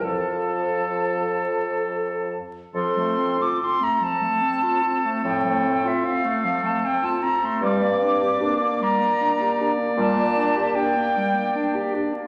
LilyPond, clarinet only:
\new Staff \with { instrumentName = "Clarinet" } { \time 3/4 \key f \major \tempo 4 = 75 a'2~ a'8 r8 | f16 a16 c'16 f'16 c'16 a16 f16 a16 c'16 f'16 c'16 a16 | f16 a16 c'16 f'16 c'16 a16 f16 a16 c'16 f'16 c'16 a16 | g16 bes16 d'16 g'16 d'16 bes16 g16 bes16 d'16 g'16 d'16 bes16 |
g16 bes16 d'16 g'16 d'16 bes16 g16 bes16 d'16 g'16 d'16 bes16 | }